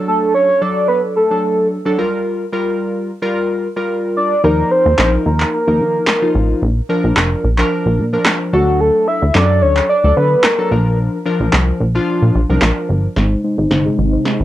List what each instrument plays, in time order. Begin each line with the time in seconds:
Already playing: synth keys F#3 D4 A4
0.08 soft synth lead A4
0.35 soft synth lead C#5
0.62 synth keys F#3 D4 A4, soft synth lead D5
0.88 soft synth lead B4
1.16 soft synth lead A4
1.31 synth keys F#3 D4 A4
1.85 synth keys F#3 D4 A4
1.98 synth keys G3 F4 A#4
2.52 synth keys G3 F4 A#4
3.22 synth keys G3 F4 A#4
3.76 synth keys G3 F4 A#4
4.17 soft synth lead D5
4.44 analog synth bass D#2, synth keys F3 D#4 A#4, soft synth lead A#4
4.71 soft synth lead C5
4.86 analog synth bass D#2
4.98 analog synth bass A#1, synth keys F3 D#4 A#4, soft synth lead C5, snare, clap
5.26 analog synth bass D#2, soft synth lead A#4
5.40 clap
5.54 soft synth lead A#4
5.67 analog synth bass D#2, synth keys F3 D#4 A#4
5.80 analog synth bass D#3
6.07 snare, clap
6.22 synth keys F3 D#4 F4
6.35 analog synth bass A1
6.62 analog synth bass A#1
6.89 synth keys F3 D4 A#4
7.04 analog synth bass A#1
7.16 analog synth bass F1, snare, clap
7.44 analog synth bass A#1
7.58 synth keys F3 D4 A#4, clap
7.86 analog synth bass A#1
7.99 analog synth bass A#2
8.13 synth keys F3 D4 A#4
8.25 snare, clap
8.53 analog synth bass D2, synth keys F#3 D4 A4, soft synth lead F#4
8.80 soft synth lead A4
9.08 soft synth lead E5
9.22 analog synth bass D2
9.35 analog synth bass F#2, synth keys F#3 D4 A4, soft synth lead D5, snare, clap
9.62 analog synth bass D2, soft synth lead C#5
9.77 clap
9.89 soft synth lead D5
10.04 analog synth bass D2, synth keys F#3 D4 A4
10.17 analog synth bass D3, soft synth lead B4
10.43 soft synth lead A#4, snare, clap
10.58 synth keys F#3 D4 A4
10.71 analog synth bass A#1, synth keys F3 D4 A#4
11.26 synth keys F3 D4 A#4
11.40 analog synth bass A#1
11.53 analog synth bass C2, snare, clap
11.80 analog synth bass A#1
11.95 synth keys F3 D4 F4
12.22 analog synth bass A#2
12.35 analog synth bass A#1
12.49 analog synth bass C2, synth keys F3 D4 A#4
12.61 analog synth bass A#1, snare, clap
12.89 analog synth bass G1
13.16 analog synth bass G#1, analog synth pad C3 G#3 D#4, synth keys G#3 D#4 C5, synth arpeggio sound G#3, snare
13.44 synth keys G#3 D#4 C5
13.58 analog synth bass G#1, synth arpeggio sound D#4
13.71 analog synth bass G1, synth keys G#3 D#4 C5, snare
13.86 synth arpeggio sound G#4
13.98 analog synth bass G#1, synth arpeggio sound G#3
14.13 synth arpeggio sound C5
14.25 synth arpeggio sound G#3, snare
14.40 analog synth bass G#1